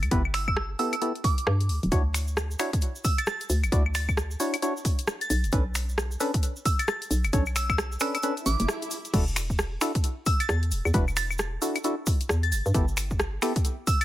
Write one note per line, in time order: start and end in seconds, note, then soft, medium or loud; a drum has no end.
0.03 0.09 D2 medium
0.03 closed hi-hat soft
0.03 claves medium
0.11 0.75 G1 loud
0.11 0.22 B3 medium
0.11 0.22 E4 medium
0.11 0.22 G4 medium
0.11 0.22 B4 loud
0.11 kick loud
0.11 closed hi-hat medium
0.25 claves medium
0.34 0.43 E6 medium
0.34 finger snap medium
0.34 open hi-hat loud
0.48 0.53 E6 medium
0.48 kick medium
0.48 claves medium
0.57 cross-stick loud
0.79 0.95 B3 medium
0.79 0.95 E4 medium
0.79 0.95 G4 medium
0.79 0.95 A4 medium
0.79 0.88 E6 medium
0.79 open hi-hat medium
0.93 0.98 E6 medium
0.93 closed hi-hat medium
0.93 claves medium
1.02 1.13 B3 medium
1.02 1.13 E4 medium
1.02 1.13 G4 medium
1.02 1.13 A4 medium
1.02 closed hi-hat medium
1.15 closed hi-hat soft
1.24 1.69 D6 medium
1.24 kick loud
1.24 open hi-hat loud
1.38 closed hi-hat medium
1.47 1.71 G2 loud
1.47 cross-stick loud
1.61 closed hi-hat soft
1.69 1.79 D2 loud
1.69 open hi-hat medium
1.83 1.89 D1 medium
1.83 closed hi-hat soft
1.92 2.56 D2 loud
1.92 2.03 D4 medium
1.92 2.03 E4 medium
1.92 2.03 F#4 medium
1.92 2.03 C#5 medium
1.92 kick loud
1.92 closed hi-hat medium
1.92 cabasa medium
2.14 finger snap medium
2.14 open hi-hat loud
2.14 cabasa medium
2.27 cabasa soft
2.37 cross-stick loud
2.37 cabasa medium
2.51 cabasa soft
2.59 2.70 D4 medium
2.59 2.70 E4 medium
2.59 2.70 F#4 medium
2.59 2.70 C#5 medium
2.59 finger snap medium
2.59 open hi-hat medium
2.59 cabasa medium
2.73 kick loud
2.73 closed hi-hat medium
2.73 cabasa soft
2.81 closed hi-hat medium
2.81 cabasa soft
2.96 cabasa soft
3.04 3.16 E6 medium
3.04 kick loud
3.04 open hi-hat loud
3.04 cabasa loud
3.18 3.24 A6 medium
3.18 closed hi-hat medium
3.18 cabasa soft
3.18 claves medium
3.26 3.36 A6 medium
3.26 cross-stick loud
3.26 cabasa medium
3.41 closed hi-hat medium
3.41 cabasa soft
3.50 3.65 D2 medium
3.50 open hi-hat medium
3.50 cabasa loud
3.63 3.70 A1 medium
3.63 closed hi-hat soft
3.63 cabasa soft
3.63 claves medium
3.72 4.36 D2 loud
3.72 3.83 D4 medium
3.72 3.83 E4 medium
3.72 3.83 F#4 medium
3.72 3.83 D5 loud
3.72 kick loud
3.72 closed hi-hat medium
3.72 cabasa soft
3.86 claves medium
3.95 4.11 A6 medium
3.95 finger snap medium
3.95 open hi-hat loud
3.95 cabasa medium
4.09 kick medium
4.09 cabasa soft
4.09 claves medium
4.17 cross-stick loud
4.17 cabasa medium
4.31 cabasa soft
4.40 4.56 D4 medium
4.40 4.56 E4 medium
4.40 4.56 F#4 medium
4.40 4.56 C#5 medium
4.40 open hi-hat loud
4.40 cabasa medium
4.54 closed hi-hat medium
4.54 cabasa soft
4.54 claves medium
4.62 4.73 D4 medium
4.62 4.73 E4 medium
4.62 4.73 F#4 medium
4.62 4.73 C#5 medium
4.62 closed hi-hat medium
4.62 cabasa medium
4.77 cabasa soft
4.85 kick loud
4.85 open hi-hat loud
4.85 cabasa medium
4.99 closed hi-hat medium
4.99 cabasa soft
5.07 cross-stick loud
5.07 cabasa soft
5.21 5.27 A6 medium
5.21 closed hi-hat medium
5.21 cabasa soft
5.30 5.45 B1 medium
5.30 5.39 A6 medium
5.30 open hi-hat medium
5.30 cabasa medium
5.44 5.50 F#1 medium
5.44 closed hi-hat soft
5.44 cabasa soft
5.52 6.16 B1 loud
5.52 5.64 C#4 medium
5.52 5.64 D4 medium
5.52 5.64 A4 medium
5.52 5.64 B4 medium
5.52 kick loud
5.52 closed hi-hat medium
5.52 cabasa medium
5.75 finger snap medium
5.75 open hi-hat loud
5.75 cabasa medium
5.89 cabasa soft
5.98 cross-stick loud
5.98 cabasa soft
6.11 cabasa soft
6.20 6.31 C#4 medium
6.20 6.31 D4 medium
6.20 6.31 A4 medium
6.20 6.31 B4 loud
6.20 open hi-hat loud
6.20 cabasa medium
6.34 kick loud
6.34 closed hi-hat medium
6.34 cabasa soft
6.43 closed hi-hat medium
6.43 cabasa medium
6.56 cabasa soft
6.65 6.77 E6 medium
6.65 kick loud
6.65 open hi-hat loud
6.65 cabasa medium
6.79 6.85 A6 medium
6.79 closed hi-hat medium
6.79 cabasa soft
6.79 claves medium
6.88 6.97 A6 medium
6.88 cross-stick loud
6.88 cabasa soft
7.02 closed hi-hat medium
7.02 cabasa soft
7.11 7.26 B1 medium
7.11 open hi-hat loud
7.11 cabasa medium
7.24 7.31 F#1 medium
7.24 closed hi-hat soft
7.24 cabasa soft
7.24 claves medium
7.33 7.97 B1 loud
7.33 7.44 C#4 medium
7.33 7.44 D4 medium
7.33 7.44 A4 medium
7.33 7.44 C#5 loud
7.33 kick loud
7.33 closed hi-hat medium
7.33 cabasa medium
7.46 cabasa soft
7.46 claves medium
7.56 7.65 E6 medium
7.56 finger snap medium
7.56 open hi-hat loud
7.56 cabasa medium
7.69 7.75 E6 medium
7.69 finger snap soft
7.69 kick medium
7.69 cabasa soft
7.69 claves medium
7.78 cross-stick loud
7.78 cabasa medium
7.92 cabasa soft
8.00 8.17 C#4 medium
8.00 8.17 D4 medium
8.00 8.17 A4 medium
8.00 8.17 B4 medium
8.00 8.10 E6 medium
8.00 finger snap medium
8.00 open hi-hat loud
8.00 cabasa medium
8.15 8.20 E6 medium
8.15 closed hi-hat medium
8.15 cabasa soft
8.15 claves medium
8.23 8.34 C#4 medium
8.23 8.34 D4 medium
8.23 8.34 A4 medium
8.23 8.34 B4 medium
8.23 closed hi-hat medium
8.23 swell medium
8.23 cabasa medium
8.37 closed hi-hat soft
8.37 cabasa soft
8.46 8.56 A1 medium
8.46 8.91 D6 medium
8.46 open hi-hat loud
8.46 cabasa medium
8.59 8.66 F#1 medium
8.59 closed hi-hat medium
8.59 cabasa soft
8.68 cross-stick loud
8.68 cabasa medium
8.82 closed hi-hat medium
8.82 cabasa soft
8.91 open hi-hat loud
8.91 cabasa medium
9.05 closed hi-hat soft
9.05 cabasa soft
9.13 9.77 E1 loud
9.13 9.25 D4 medium
9.13 9.25 E4 medium
9.13 9.25 F#4 medium
9.13 9.25 A4 medium
9.13 kick loud
9.13 closed hi-hat medium
9.13 crash loud
9.13 cabasa medium
9.28 cabasa soft
9.36 finger snap medium
9.36 open hi-hat loud
9.36 cabasa loud
9.50 kick medium
9.50 cabasa soft
9.58 cross-stick loud
9.58 cabasa medium
9.81 9.92 D4 medium
9.81 9.92 E4 medium
9.81 9.92 F#4 medium
9.81 9.92 A4 loud
9.81 finger snap medium
9.81 open hi-hat loud
9.81 cabasa medium
9.95 kick loud
9.95 closed hi-hat medium
9.95 cabasa soft
10.04 closed hi-hat medium
10.04 cabasa medium
10.26 10.37 E6 medium
10.26 kick loud
10.26 open hi-hat loud
10.26 cabasa loud
10.40 10.46 A6 medium
10.40 closed hi-hat medium
10.40 cabasa soft
10.40 claves medium
10.49 10.73 E2 loud
10.49 10.58 A6 medium
10.49 cross-stick loud
10.49 cabasa medium
10.63 closed hi-hat medium
10.71 10.81 E1 loud
10.71 open hi-hat loud
10.71 cabasa medium
10.85 10.92 E2 medium
10.85 cabasa soft
10.85 claves medium
10.94 11.58 E1 loud
10.94 11.05 D4 medium
10.94 11.05 E4 medium
10.94 11.05 F#4 medium
10.94 11.05 B4 loud
10.94 kick loud
10.94 closed hi-hat medium
10.94 cabasa medium
11.08 cabasa soft
11.08 claves medium
11.16 11.33 A6 medium
11.16 finger snap medium
11.16 open hi-hat loud
11.16 cabasa medium
11.31 cabasa soft
11.31 claves medium
11.38 cross-stick loud
11.38 cabasa medium
11.62 11.78 D4 medium
11.62 11.78 E4 medium
11.62 11.78 F#4 medium
11.62 11.78 A4 medium
11.62 open hi-hat loud
11.62 cabasa loud
11.75 closed hi-hat medium
11.75 cabasa soft
11.75 claves medium
11.84 11.95 D4 medium
11.84 11.95 E4 medium
11.84 11.95 F#4 medium
11.84 11.95 A4 medium
11.84 closed hi-hat medium
11.84 cabasa medium
12.06 kick loud
12.06 open hi-hat loud
12.06 cabasa loud
12.20 closed hi-hat medium
12.20 cabasa soft
12.29 12.54 E2 loud
12.29 cross-stick loud
12.29 cabasa medium
12.43 12.49 A6 medium
12.43 closed hi-hat soft
12.52 12.62 G1 loud
12.52 12.61 A6 medium
12.52 open hi-hat loud
12.52 cabasa loud
12.66 12.72 G2 medium
12.66 cabasa soft
12.74 13.38 G1 loud
12.74 12.85 B3 medium
12.74 12.85 E4 medium
12.74 12.85 G4 medium
12.74 12.85 A4 medium
12.74 kick loud
12.74 closed hi-hat medium
12.74 cabasa medium
12.88 cabasa soft
12.97 finger snap medium
12.97 open hi-hat loud
12.97 cabasa loud
13.10 kick medium
13.10 cabasa soft
13.20 cross-stick loud
13.20 cabasa soft
13.42 13.53 B3 medium
13.42 13.53 E4 medium
13.42 13.53 G4 medium
13.42 13.53 A4 loud
13.42 finger snap medium
13.42 open hi-hat medium
13.42 cabasa medium
13.56 kick loud
13.56 closed hi-hat medium
13.56 cabasa soft
13.65 closed hi-hat medium
13.65 cabasa medium
13.87 13.98 E6 medium
13.87 kick loud
13.87 open hi-hat loud
13.87 cabasa medium
14.01 14.05 A6 medium
14.01 closed hi-hat medium
14.01 cabasa soft
14.01 claves medium